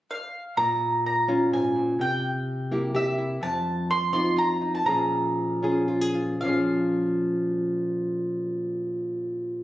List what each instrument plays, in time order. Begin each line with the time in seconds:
0.11 mandolin F5
0.57 nylon-string guitar A#2, mandolin A#5
1.06 mandolin A#5
1.28 nylon-string guitar C#4 F4
1.52 nylon-string guitar G#2, mandolin G#5
1.76 nylon-string guitar A#2
1.99 nylon-string guitar C3, mandolin G5
2.71 nylon-string guitar A#3 E4 G4
2.95 nylon-string guitar G4, mandolin E5
3.18 nylon-string guitar E4
3.42 nylon-string guitar F2, mandolin A5
3.91 mandolin C6
4.13 nylon-string guitar C4 D#4 F4, mandolin C6
4.37 nylon-string guitar F4, mandolin A#5
4.61 nylon-string guitar D#4
4.75 mandolin A5
4.85 nylon-string guitar A#2 F3 C#4 F4 G#4, mandolin A#5
5.63 nylon-string guitar C#4 F4 G#4
5.88 nylon-string guitar F4
6.01 nylon-string guitar G#4
6.15 nylon-string guitar F4
6.41 nylon-string guitar A#2 F3, mandolin F5
6.45 nylon-string guitar C#4 F4
6.49 nylon-string guitar G#4